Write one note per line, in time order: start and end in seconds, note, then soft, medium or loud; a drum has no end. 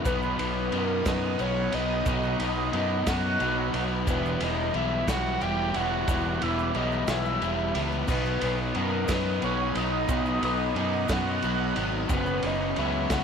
0.05 0.35 B1 loud
0.05 0.71 B2 loud
0.05 0.40 F#3 loud
0.05 0.37 B3 medium
0.05 0.39 B3 loud
0.05 0.37 D#4 loud
0.05 0.37 B4 loud
0.05 4.04 D#5 medium
0.05 4.04 F#5 medium
0.05 2.05 D#6 medium
0.05 kick loud
0.05 ride medium
0.05 shaker medium
0.22 shaker soft
0.38 0.69 B1 medium
0.38 2.05 B2 medium
0.38 0.73 F#3 medium
0.38 0.74 B3 medium
0.38 0.76 B3 medium
0.38 0.74 D#4 medium
0.38 0.74 B4 medium
0.38 ride medium
0.71 1.02 F#2 medium
0.71 1.38 B2 medium
0.71 1.09 F#3 medium
0.71 1.07 A#3 medium
0.71 1.07 B3 medium
0.71 1.05 D#4 medium
0.71 1.06 A#4 medium
0.71 ride medium
1.06 1.35 F#2 medium
1.06 1.40 F#3 medium
1.06 1.41 B3 medium
1.06 1.43 B3 medium
1.06 1.41 D#4 medium
1.06 1.42 B4 loud
1.06 kick medium
1.06 snare loud
1.06 ride loud
1.06 shaker loud
1.39 1.69 B1 medium
1.39 2.05 B2 medium
1.39 1.75 F#3 loud
1.39 1.74 B3 loud
1.39 1.77 C#4 medium
1.39 1.71 D#4 medium
1.39 1.76 C#5 loud
1.39 ride medium
1.39 shaker soft
1.72 2.02 B1 medium
1.72 2.08 F#3 medium
1.72 2.09 B3 medium
1.72 2.08 D#4 medium
1.72 2.75 D#4 medium
1.72 2.74 D#5 loud
1.72 ride medium
2.06 2.36 B1 loud
2.06 2.71 B2 loud
2.06 2.42 F#3 loud
2.06 2.41 B3 loud
2.06 2.39 D#4 loud
2.06 4.05 C#6 medium
2.06 kick loud
2.06 ride loud
2.06 shaker medium
2.23 shaker soft
2.40 2.69 B1 medium
2.40 4.07 B2 medium
2.40 2.74 F#3 medium
2.40 2.75 B3 medium
2.40 2.75 D#4 medium
2.40 ride medium
2.72 3.03 F#2 loud
2.72 3.39 B2 medium
2.72 3.09 F#3 medium
2.72 3.08 B3 medium
2.72 3.05 D#4 medium
2.72 3.11 D#4 medium
2.72 3.09 D#5 loud
2.72 ride medium
3.06 3.36 F#2 medium
3.06 3.41 F#3 medium
3.06 3.42 B3 medium
3.06 3.42 D#4 medium
3.06 3.83 F#4 medium
3.06 3.83 F#5 loud
3.06 kick medium
3.06 snare loud
3.06 ride loud
3.06 shaker loud
3.40 3.70 B1 medium
3.40 4.05 B2 medium
3.40 3.77 F#3 medium
3.40 3.75 B3 medium
3.40 3.73 D#4 medium
3.40 ride medium
3.40 shaker soft
3.74 4.03 B1 loud
3.74 4.07 F#3 medium
3.74 4.08 B3 medium
3.74 4.05 D#4 medium
3.74 ride medium
4.07 4.36 E1 loud
4.07 4.73 E3 medium
4.07 4.43 G3 loud
4.07 4.41 B3 loud
4.07 4.44 B3 medium
4.07 4.40 E4 loud
4.07 4.45 B4 loud
4.07 kick loud
4.07 ride loud
4.07 shaker loud
4.25 shaker soft
4.40 4.70 E1 medium
4.40 6.06 E3 medium
4.40 4.74 G3 medium
4.40 4.76 B3 medium
4.40 4.75 D#4 medium
4.40 4.76 E4 medium
4.40 4.76 D#5 loud
4.40 ride medium
4.73 5.04 B1 medium
4.73 5.39 E3 medium
4.73 5.08 G3 medium
4.73 5.08 B3 medium
4.73 5.06 E4 medium
4.73 5.06 E5 medium
4.73 ride medium
5.07 5.37 B1 medium
5.07 5.41 G3 medium
5.07 5.42 B3 medium
5.07 5.42 E4 medium
5.07 7.08 F#4 medium
5.07 5.45 F#4 medium
5.07 5.43 F#5 loud
5.07 kick medium
5.07 snare loud
5.07 ride loud
5.07 shaker medium
5.40 5.71 E1 medium
5.40 6.07 E3 medium
5.40 5.76 G3 medium
5.40 5.76 B3 medium
5.40 5.73 E4 loud
5.40 5.78 G4 medium
5.40 5.77 G5 loud
5.40 ride medium
5.40 shaker soft
5.74 6.04 E1 medium
5.74 6.08 G3 medium
5.74 6.10 B3 medium
5.74 6.10 E4 medium
5.74 6.42 F#4 loud
5.74 6.42 F#5 loud
5.74 ride medium
6.08 6.37 E1 loud
6.08 6.74 E3 medium
6.08 6.43 G3 loud
6.08 6.43 B3 medium
6.08 6.41 E4 medium
6.08 kick loud
6.08 ride loud
6.08 shaker medium
6.42 6.71 E1 medium
6.42 8.08 E3 medium
6.42 6.75 G3 medium
6.42 6.77 B3 medium
6.42 6.77 E4 medium
6.42 6.79 E4 medium
6.42 6.78 E5 loud
6.42 ride medium
6.59 shaker soft
6.74 7.04 B1 medium
6.74 7.40 E3 medium
6.74 7.10 G3 medium
6.74 7.09 B3 medium
6.74 7.10 D#4 medium
6.74 7.07 E4 medium
6.74 7.09 D#5 medium
6.74 ride medium
6.92 shaker soft
7.07 7.37 B1 loud
7.07 7.41 G3 medium
7.07 7.43 B3 medium
7.07 7.43 E4 medium
7.07 7.81 E4 medium
7.07 9.09 F#4 medium
7.07 7.80 E5 loud
7.07 snare loud
7.07 ride loud
7.07 shaker medium
7.25 shaker soft
7.41 7.71 E1 medium
7.41 8.06 E3 medium
7.41 7.76 G3 loud
7.41 7.75 B3 medium
7.41 7.73 E4 medium
7.41 ride medium
7.41 shaker soft
7.74 8.05 C#2 loud
7.74 8.08 G3 medium
7.74 8.09 B3 medium
7.74 8.06 E4 medium
7.74 ride medium
7.92 shaker soft
8.07 8.38 B1 loud
8.07 8.74 B2 loud
8.07 8.44 F#3 medium
8.07 8.42 B3 loud
8.07 8.41 D#4 loud
8.07 8.41 B4 loud
8.07 12.06 D#5 medium
8.07 12.06 D#6 loud
8.07 kick loud
8.07 crash loud
8.07 shaker medium
8.12 8.41 B3 medium
8.25 shaker soft
8.41 8.71 B1 medium
8.41 10.08 B2 medium
8.41 8.75 F#3 medium
8.41 8.76 B3 medium
8.41 8.77 D#4 medium
8.41 8.58 B4 medium
8.41 ride medium
8.46 8.60 B3 medium
8.74 9.05 F#2 medium
8.74 9.41 B2 medium
8.74 9.11 F#3 medium
8.74 9.09 B3 medium
8.74 9.07 D#4 medium
8.74 9.12 A#4 loud
8.74 ride medium
8.79 9.14 A#3 medium
9.08 9.38 F#2 loud
9.08 9.43 F#3 medium
9.08 9.44 B3 medium
9.08 9.44 D#4 medium
9.08 9.43 B4 loud
9.08 kick medium
9.08 snare loud
9.08 ride loud
9.08 shaker loud
9.12 9.44 B3 medium
9.42 9.72 B1 medium
9.42 10.08 B2 medium
9.42 9.78 F#3 medium
9.42 9.77 B3 medium
9.42 9.75 C#4 medium
9.42 9.75 D#4 medium
9.42 9.75 C#5 loud
9.42 ride medium
9.42 shaker soft
9.75 10.05 B1 medium
9.75 10.10 F#3 medium
9.75 10.11 B3 medium
9.75 10.11 D#4 medium
9.75 10.40 D#4 medium
9.75 10.39 D#5 loud
9.75 ride medium
10.09 10.38 B1 loud
10.09 10.74 B2 loud
10.09 10.45 F#3 loud
10.09 10.44 B3 loud
10.09 10.41 D#4 loud
10.09 12.09 G#5 medium
10.09 kick loud
10.09 ride loud
10.09 shaker loud
10.25 shaker soft
10.42 10.72 B1 medium
10.42 12.10 B2 medium
10.42 10.76 F#3 medium
10.42 10.77 B3 medium
10.42 10.77 D#4 medium
10.42 10.75 D#4 medium
10.42 10.75 D#5 medium
10.42 ride medium
10.75 11.05 F#2 medium
10.75 11.41 B2 medium
10.75 11.12 F#3 medium
10.75 11.10 B3 medium
10.75 11.13 D#4 medium
10.75 11.07 D#4 medium
10.75 11.14 D#5 medium
10.75 ride medium
11.08 11.39 F#2 loud
11.08 11.43 F#3 medium
11.08 11.44 B3 medium
11.08 11.44 D#4 medium
11.08 11.86 F#4 medium
11.08 kick medium
11.08 snare loud
11.08 ride loud
11.08 shaker medium
11.13 11.86 F#5 loud
11.42 11.72 B1 medium
11.42 12.08 B2 loud
11.42 11.78 F#3 medium
11.42 11.77 B3 medium
11.42 11.74 D#4 loud
11.42 ride medium
11.42 shaker soft
11.75 12.06 G#1 medium
11.75 12.10 F#3 medium
11.75 12.11 B3 medium
11.75 12.07 D#4 medium
11.75 ride medium
12.08 12.39 F#1 loud
12.08 12.76 F#2 medium
12.08 12.75 C#3 loud
12.08 12.46 F#3 loud
12.08 12.44 B3 loud
12.08 12.41 C#4 loud
12.08 13.24 B4 medium
12.08 13.24 C#5 medium
12.08 13.24 F#5 medium
12.08 13.24 C#6 medium
12.08 kick loud
12.08 ride medium
12.08 shaker medium
12.13 12.47 B3 medium
12.13 12.48 B4 loud
12.26 shaker soft
12.42 12.73 F#1 loud
12.42 13.24 C#3 medium
12.42 12.77 F#3 medium
12.42 12.78 B3 medium
12.42 12.78 C#4 medium
12.42 12.78 D#4 medium
12.42 12.78 D#5 loud
12.42 ride medium
12.76 13.06 C#2 medium
12.76 13.24 C#3 medium
12.76 13.12 F#3 medium
12.76 13.11 B3 medium
12.76 13.08 C#4 medium
12.76 13.14 E5 medium
12.76 ride medium
12.81 13.15 E4 medium
13.10 13.24 C#2 loud
13.10 13.24 F#3 medium
13.10 13.24 B3 medium
13.10 13.24 C#4 medium
13.10 13.24 F#4 medium
13.10 13.24 F#5 loud
13.10 kick medium
13.10 snare loud
13.10 ride loud
13.10 shaker medium